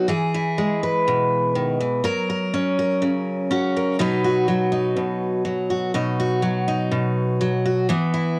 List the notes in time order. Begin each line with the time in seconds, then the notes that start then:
0.08 E3 G#4
0.34 E4
0.58 G#3
0.83 B4
1.08 B2
1.55 D#3
1.80 E3
2.04 F#3 A#4
2.29 A#4
2.54 C#4
2.79 A#4
3.02 C#3
3.51 C#4 F#4
3.77 A#4
3.99 B2 F#3 D#4 F#4 B4
4.25 F#4
4.48 F#3
4.72 D#4
4.97 B2
5.45 F#3
5.70 F#4
5.94 B2 D#4
6.20 F#4
6.42 F#3
6.68 D#4
6.91 B2
7.41 F#3
7.65 F#4
7.89 E3 B3
8.14 E4